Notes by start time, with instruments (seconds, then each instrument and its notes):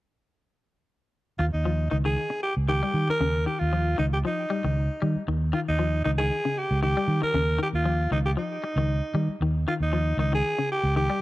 1.39 fingered electric bass D#2, alto saxophone F4, muted clean electric guitar stroke
1.53 fingered electric bass D#2, alto saxophone D#4
1.65 clean electric guitar F3
1.91 fingered electric bass C#2, clean electric guitar D#3, alto saxophone D#4
2.05 clean electric guitar D#3, alto saxophone G#4
2.30 muted clean electric guitar stroke
2.43 alto saxophone G4
2.57 fingered electric bass C#2
2.68 clean electric guitar D#3, alto saxophone G4
2.83 clean electric guitar G3
2.94 fingered electric bass D#3
3.09 clean electric guitar D#3, alto saxophone A#4, muted fingered electric bass stroke
3.20 fingered electric bass D#2, clean electric guitar C#3
3.46 clean electric guitar D#3, alto saxophone G4
3.60 fingered electric bass D#2, alto saxophone F4
3.73 clean electric guitar F3
3.98 fingered electric bass C#2, clean electric guitar D#3, alto saxophone D#4
4.14 alto saxophone G4
4.25 clean electric guitar F3, alto saxophone D#4
4.50 clean electric guitar G3
4.64 fingered electric bass C#2, clean electric guitar D#3
5.02 fingered electric bass D#3, clean electric guitar G3
5.16 muted fingered electric bass stroke
5.28 fingered electric bass D#2, clean electric guitar D#3
5.53 clean electric guitar D#3, alto saxophone F4
5.69 fingered electric bass D#2, alto saxophone D#4
5.79 clean electric guitar F3
6.05 fingered electric bass C#2, clean electric guitar D#3, alto saxophone D#4
6.18 clean electric guitar D#3, alto saxophone G#4
6.45 clean electric guitar C#3
6.58 alto saxophone G4
6.71 fingered electric bass C#2
6.83 clean electric guitar D#3, alto saxophone G4
6.97 clean electric guitar G3
7.08 fingered electric bass D#3
7.22 clean electric guitar D#3, alto saxophone A#4, muted fingered electric bass stroke
7.34 fingered electric bass D#2, clean electric guitar C#3
7.59 clean electric guitar D#3
7.63 alto saxophone G4
7.73 fingered electric bass D#2, alto saxophone F4
7.85 clean electric guitar F3
8.11 fingered electric bass C#2, clean electric guitar D#3, alto saxophone D#4
8.26 alto saxophone G4
8.37 clean electric guitar F3, alto saxophone D#4
8.64 muted clean electric guitar stroke
8.76 fingered electric bass C#2, clean electric guitar D#3
9.14 fingered electric bass D#3, clean electric guitar G3
9.29 muted fingered electric bass stroke
9.41 fingered electric bass D#2, clean electric guitar D#3
9.68 clean electric guitar D#3, alto saxophone F4
9.80 fingered electric bass D#2, alto saxophone D#4
9.93 clean electric guitar F3
10.17 fingered electric bass C#2, clean electric guitar D#3, alto saxophone D#4
10.33 clean electric guitar D#3, alto saxophone G#4
10.58 clean electric guitar C#3
10.72 alto saxophone G4
10.83 fingered electric bass C#2
10.96 clean electric guitar D#3, alto saxophone G4
11.10 clean electric guitar G3